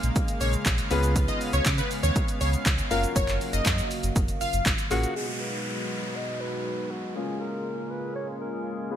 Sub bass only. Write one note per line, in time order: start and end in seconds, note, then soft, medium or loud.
0.03 0.11 A#1 medium
0.41 0.56 A#1 loud
0.66 0.81 A#1 loud
0.91 1.29 C#2 loud
1.53 1.61 C#2 medium
1.66 1.81 C#3 loud
2.03 2.11 D#2 loud
2.41 2.56 C#2 loud
2.66 2.81 C#2 medium
2.91 3.06 F#1 loud
3.16 3.39 F#1 loud
3.53 3.61 F#1 loud
3.66 3.81 F#2 loud
4.03 4.11 F#1 medium
4.16 4.31 F#1 medium
4.41 4.46 F#1 medium
4.53 4.61 F#1 medium
4.66 4.74 G#1 loud
4.91 5.06 A1 medium